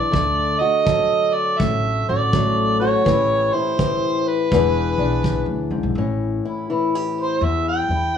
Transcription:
Already playing: E2 E3 D5
0.12 D2 D3 A3, kick
0.59 F#4 D#5
0.85 F#3 A4, kick
1.33 D5
1.59 A1 A2 E5, kick
2.09 A1 F#4 D5
2.33 F#3 A3, kick
2.80 F#4 C#5
3.05 A1 A2 E3 C#4 E4 G4, kick
3.53 E4 C5
3.79 E3 G4, kick
4.27 B4
4.51 E1 E2 E3 B3 D4 G#4, kick
4.98 B1 D4
5.23 F#2, kick
5.46 D2
5.71 C#2 G#2
5.83 B1
5.95 A1 A2 C#4
6.45 E4
6.70 E3 E4
6.95 G4
7.21 C5
7.41 E2 E5
7.68 G5
7.89 E2 E4

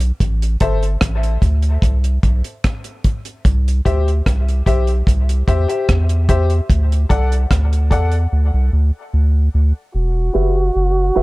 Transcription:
Already playing: B1
0.00 closed hi-hat
0.20 A1, kick, closed hi-hat
0.42 closed hi-hat
0.60 G1 A4 C5 E5, kick, closed hi-hat
0.83 closed hi-hat
1.01 A1, kick, cross-stick, closed hi-hat
1.23 closed hi-hat
1.42 D2, kick, closed hi-hat
1.62 closed hi-hat
1.82 C2, kick, closed hi-hat
2.04 closed hi-hat
2.23 B1, kick, closed hi-hat
2.44 closed hi-hat
2.64 kick, cross-stick, closed hi-hat
2.84 closed hi-hat
3.04 kick, closed hi-hat
3.25 closed hi-hat
3.45 C2, kick, closed hi-hat
3.68 closed hi-hat
3.85 D2 G4 C5 E5, kick, closed hi-hat
4.08 closed hi-hat
4.26 C2, kick, cross-stick, closed hi-hat
4.49 closed hi-hat
4.66 B1 G4 C5 E5, kick, closed hi-hat
4.87 closed hi-hat
5.07 C2, kick, closed hi-hat
5.29 closed hi-hat
5.47 E2 G4 C5 E5, kick, closed hi-hat
5.68 G4 C5 E5, closed hi-hat
5.89 E2, kick, cross-stick, closed hi-hat
6.09 closed hi-hat
6.29 G4 C5 E5, kick, closed hi-hat
6.50 closed hi-hat
6.70 D2, kick, closed hi-hat
6.92 closed hi-hat
7.09 C2 A4 D5 F#5, kick, closed hi-hat
7.32 closed hi-hat
7.51 D2, kick, cross-stick, closed hi-hat
7.73 closed hi-hat
7.90 E2 A4 D5 F#5, kick, closed hi-hat
8.12 closed hi-hat
8.32 D2
8.54 C2
8.73 D2
9.13 D2
9.54 D2
9.95 E1 F#4
10.33 F#1 G4 B4 E5
10.76 F#1
11.15 E1 G4 B4 E5

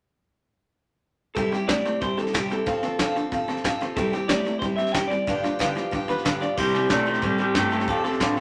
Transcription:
1.35 C3 G3 C4 E4 G4 A4, kick, snare
1.51 C3 G3 C4 E4 G4, snare
1.68 C3 G3 A3 C4 E4 G4 D5, kick, snare, hi-hat pedal
1.85 C3 A3 C4 E4 G4, snare
2.01 C3 G3 C4 E4 G4 C5, kick, snare
2.17 C3 G3 C4 E4 G4 A4, snare
2.27 snare
2.33 C3 G3 C4 E4 G4, kick, snare, hi-hat pedal
2.50 C3 G3 C4 E4 G4 A4, snare
2.66 F2 C3 F3 C4 F4 A4, kick, snare
2.83 F2 C3 C4 F4 A4, snare
2.99 F2 D3 F3 C4 F4 A4, kick, snare, hi-hat pedal
3.16 F2 D3 C4 F4 A4, snare
3.32 F2 C3 F3 C4 F4 A4, kick, snare
3.48 F2 C3 C4 F4 A4, snare
3.57 snare
3.64 F2 C3 F3 C4 F4 A4, kick, snare, hi-hat pedal
3.81 F2 C3 C4 F4 A4, snare
3.96 C3 G3 C4 E4 G4 A4, kick, snare
4.12 C3 G3 C4 E4 G4, snare
4.28 C3 G3 A3 C4 E4 G4 D5, kick, snare, hi-hat pedal
4.45 C3 A3 C4 E4 G4, snare
4.59 C3 G3 C4 C5, kick, snare
4.64 E4 G4
4.76 C3 G3 E4 G4 E5, snare
4.81 C4
4.87 snare
4.92 C3 G3 C4 G5, kick, snare, hi-hat pedal
4.96 E4 G4
5.08 C3 G3 E4 G4 D5, snare
5.13 C4
5.27 G2 D3 F3 B3 F4 G4, kick, snare
5.44 G2 D3 F3 B3 F4 G4, snare
5.59 G2 D3 E3 F3 B3 F4 G4, kick, snare, hi-hat pedal
5.75 G2 E3 F3 B3 F4 G4, snare
5.91 G2 D3 F3 B3 F4 G4, kick, snare
6.08 G2 D3 F3 B3 F4 G4 B4, snare
6.18 snare
6.25 G2 D3 F3 B3 F4 G4, kick, snare, hi-hat pedal
6.40 G2 D3 F3 B3 F4 G4 D5, snare
6.57 C3 G3 C4 E4 G4 C5, kick, snare, crash
6.74 C3 G3 C4 E4 G4, snare
6.89 B2 C3 G3 A3 C4 E4 G4 D5, kick, snare, hi-hat pedal
7.06 C3 A3 C4 E4 G4 C5, snare
7.14 snare
7.22 A2 C3 G3 C4 E4 G4 A4, kick, snare
7.38 C3 G3 C4 E4 G4, snare
7.55 G2 C3 G3 A3 C4 E4 G4, kick, snare, hi-hat pedal
7.70 C3 A3 C4 E4 G4, snare
7.80 snare
7.88 F2 C3 F3 C4 F4 A4, kick, snare
8.04 F2 C3 C4 F4 A4, snare
8.13 snare
8.20 F2 A2 D3 F3 C4 F4 A4, kick, snare, hi-hat pedal
8.37 F2 A4, snare

